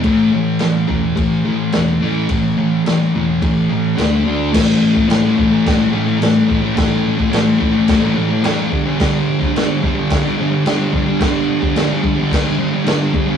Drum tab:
CC |x---x---x---x---|x---x---x---x---|x---x---x---x---|x---x---x---x---|
SD |----o-------o---|----o-------o---|o---o---o---o---|o---o---o---o---|
BD |o-----o-o-------|o-------o-------|o--o--o-o-----o-|o--o--o-o-----o-|

CC |x---x---x---x---|x---x---x---x---|
SD |o---o---o---o---|o---o---o---o---|
BD |o--o--o-o-----o-|o--o--o-o-----o-|